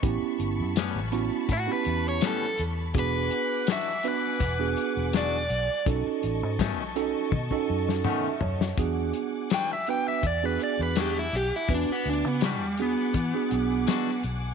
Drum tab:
HH |x-x-x-x-x-x-x-x-|x-x-x-x-x-x-x-x-|x-x-x-x---------|x-x-x-x-x-x-x-x-|
TB |----x-------x---|----x-------x---|----x-----------|----x-------x---|
SD |----o-------oo--|----o-------o---|----o------o---o|----o-------oo--|
T1 |----------------|----------------|--------o-------|----------------|
T2 |----------------|----------------|------------o---|----------------|
FT |----------------|----------------|--------------o-|----------------|
BD |o-------o-------|o-------o-------|o---o---oo------|o-------o-------|

HH |x-x-x-x-x-x-x-x-|
TB |----x-------x---|
SD |----o-------oo--|
T1 |----------------|
T2 |----------------|
FT |----------------|
BD |o-------o-------|